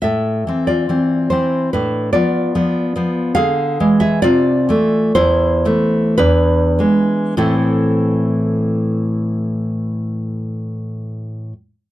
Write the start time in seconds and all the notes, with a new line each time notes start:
0.02 A2 A4 E5
0.47 E3 C4
0.67 F4 D5
0.89 E3 C4
1.30 E3 C4 E4 C5
1.73 A2 D4 B4
2.13 F3 B3 F4 D5
2.55 F3 B3
2.96 F3 B3
3.35 D3 G#4 F5
3.80 E3 G#3
4.00 G#4 E5
4.22 C3 F4 D5
4.69 E3 A3
5.15 E2 E4 C5
5.65 E3 A3
6.18 E2 D4 B4
6.79 E3 G#3
7.37 A2 E3 C4 E4 A4